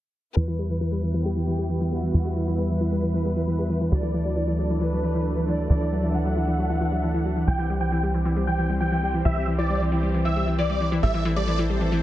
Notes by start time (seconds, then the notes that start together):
0.36 E2 E3 G3 B3 E4 B4 E5
0.48 E3
0.59 G3
0.70 E3
0.81 E3
0.92 G3
1.03 E3
1.14 E3
1.25 G3 G4
1.36 E3
1.48 E3
1.59 G3
1.70 E3
1.81 E3
1.92 G3 F#4
2.03 E3
2.14 E2 E3
2.25 G3
2.36 E3
2.48 E3
2.59 G3 B4
2.70 E3
2.81 E3
2.92 G3
3.03 E3
3.14 E3
3.25 G3
3.36 E3
3.48 E3
3.59 G3
3.70 E3
3.81 E3
3.92 D2 F#3 A3 D4 A4 D5
4.03 E3
4.14 E3
4.25 F#3
4.36 E3
4.48 E3
4.59 F#3
4.70 E3
4.81 E3 B4
4.92 F#3
5.03 E3
5.14 E3
5.25 F#3
5.37 E3
5.48 E3 D5
5.59 F#3
5.70 D2 E3 E5
5.81 E3
5.92 F#3
6.03 E3
6.14 E3 F#5
6.25 F#3
6.36 E3
6.48 E3
6.59 F#3
6.70 E3
6.81 E3
6.92 F#3
7.03 E3
7.14 E3
7.25 F#3
7.36 E3
7.47 C2 E3 G3 C4 G4 C5 G5
7.59 E3
7.70 G3
7.81 E3 G5
7.92 E3
8.03 G3
8.14 E3
8.25 E3
8.36 G3
8.47 E3 G5
8.59 E3
8.70 G3
8.81 E3 G5
8.92 E3
9.03 G3
9.14 E3
9.25 C2 E3 E5
9.36 G3
9.48 E3
9.58 E3 D5
9.70 G3
9.81 E3
9.92 E3
10.03 G3
10.14 E3
10.25 E3 E5
10.36 G3
10.47 E3
10.59 E3 D5
10.70 G3
10.81 E3
10.92 E3
11.03 A1 G3 A3 C4 A4 C5 E5
11.14 E3
11.25 E3
11.36 G3 D5
11.48 E3
11.59 E3
11.70 G3
11.81 E3
11.92 E3